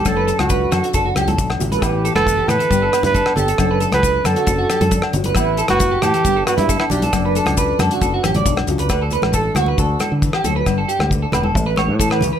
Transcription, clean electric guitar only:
\new Staff \with { instrumentName = "Clean electric guitar" } { \time 4/4 \key d \major \tempo 4 = 136 a'16 b'16 a'8 b'8 a'16 fis'16 a'16 fis'16 g'16 a'8 r8 b'16 | b'8 a'16 b'8 g'16 a'16 a'16 g'16 a'16 b'8 a'8 g'16 a'16~ | a'16 b'16 a'8 b'8 a'16 fis'16 a'16 fis'16 g'16 a'8 r8 b'16 | b'8 a'16 b'8 g'16 a'16 a'16 g'16 a'16 b'8 a'8 g'16 a'16~ |
a'16 b'16 a'8 b'8 a'16 fis'16 a'16 fis'16 g'16 d''8 r8 b'16 | b'16 a'16 b'8 a'8 fis'16 b'16 a'8 a'16 r8 g'16 a'16 b'16~ | b'16 a'16 g'8 r16 a'16 b'16 a'8 b'16 cis''8 a'16 b'8 b'16 | }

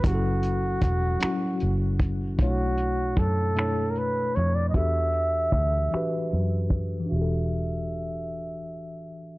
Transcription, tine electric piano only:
\new Staff \with { instrumentName = "Tine electric piano" } { \time 6/8 \key e \dorian \tempo 4. = 51 <fis cis' e' g' a'>4 r8 <fis cis' e' fis'>4 r8 | <b, a d' e' cis''>4 r8 <b, a d' e' cis''>4 r8 | <e d' fis' g' a'>4 r8 <e d' fis' g' b'>4 r8 | <e d' fis' g' a'>2. | }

